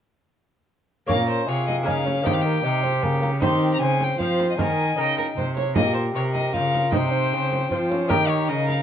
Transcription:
1.07 cello A#2, lute A#2 A#3 A#4 C#5, bassoon C#4, violin A#4 F5, frame drum
1.30 violin C5
1.48 lute C3, cello C3, bassoon F4, violin G#4 C#5
1.67 violin D#5, frame drum
1.83 cello C#3, lute A#3 C#4 A#4, bassoon D#4
1.87 lute C#3, violin F5, frame drum
2.06 bassoon C#4, frame drum
2.22 cello D#3, lute D#3 A#3 D#4 A#4, bassoon C4, violin G4
2.26 violin G5, frame drum
2.34 violin F5
2.41 violin G5
2.45 bassoon A#3
2.64 lute C3, cello C3, bassoon D#4, violin G4
2.84 bassoon C4, frame drum
3.02 lute C#3, cello C#3, bassoon A#3, frame drum
3.22 bassoon A#3, frame drum
3.40 lute D#3 D#4 C5, cello D#3, bassoon C4, violin G4 C6, frame drum
3.74 violin A#5
3.80 lute C#3, cello C#3, violin C5 G#5
4.00 violin G5, frame drum
4.19 cello F3, lute F3, bassoon C4, violin F5, frame drum
4.40 frame drum
4.50 violin D#5
4.58 cello D#3, lute D#3 D#4 A#4, bassoon D#4, violin A#4 G#5, frame drum
4.96 cello C#3, lute C#3 D#4 A#4, violin D#5 G5
5.18 violin A#4, frame drum
5.37 cello C3, lute C3, violin C5, frame drum
5.57 violin C#5, frame drum
5.76 cello A#2, lute A#2, bassoon G4, violin A#4 D#5, frame drum
5.95 violin C5
6.15 cello C3, lute C3, violin A#4 C#5
6.34 violin D#5, frame drum
6.54 cello C#3, lute C#3, bassoon F4, violin F5, frame drum
6.75 frame drum
6.91 lute C3 D#4 C5, cello C3, bassoon D#4, violin G5, frame drum
6.95 violin C5
7.12 bassoon C4
7.33 lute C#3, cello C#3
7.52 frame drum
7.71 lute F3, cello F3, bassoon C4, violin C5, frame drum
7.91 bassoon C#4, frame drum
8.08 lute D#3 D#4 A#4, cello D#3, bassoon D#4, violin G4 G5, frame drum
8.28 violin C#5
8.48 lute C#3, cello C#3, violin A#4 D#5
8.68 violin F5, frame drum

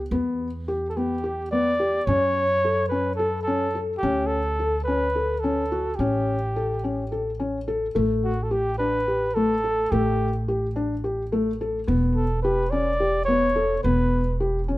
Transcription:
0.11 upright bass E2, felt piano B3
0.68 felt piano G4
0.90 flugelhorn A4
0.97 felt piano B3, flugelhorn G4
1.24 felt piano G4
1.51 felt piano B3, flugelhorn D5
1.80 felt piano G4
2.06 upright bass F#2, felt piano C#4, flugelhorn C#5
2.64 felt piano A4
2.88 felt piano C#4, flugelhorn B4
3.16 flugelhorn A4, felt piano A4
3.43 flugelhorn A4
3.47 felt piano C#4
3.75 felt piano A4
3.98 flugelhorn G4
4.03 upright bass D2, felt piano C#4
4.27 flugelhorn A4
4.59 felt piano A4
4.84 felt piano C#4, flugelhorn B4
5.15 felt piano A4
5.40 felt piano C#4, flugelhorn A4
5.72 felt piano F#4
5.96 upright bass A1, flugelhorn G4
6.00 felt piano C#4
6.56 felt piano A4
6.84 felt piano C#4
7.12 felt piano A4
7.40 felt piano C#4
7.68 felt piano A4
7.95 upright bass A1, felt piano A3
8.24 flugelhorn F#4
8.43 flugelhorn A4
8.51 felt piano G4, flugelhorn G4
8.78 felt piano D4, flugelhorn B4
9.08 felt piano G4
9.35 felt piano A3, flugelhorn A4
9.64 felt piano A4
9.92 upright bass A1, felt piano A3, flugelhorn G4
10.48 felt piano G4
10.76 felt piano D4
11.04 felt piano G4
11.32 felt piano A3
11.61 felt piano A4
11.87 upright bass E1, felt piano B3
12.15 flugelhorn A4
12.43 felt piano G4, flugelhorn B4
12.71 felt piano C#4, flugelhorn D5
13.00 felt piano G4
13.25 felt piano B3, flugelhorn C#5
13.56 felt piano A4
13.84 upright bass E1, felt piano B3, flugelhorn B4
14.40 felt piano G4
14.68 felt piano C#4

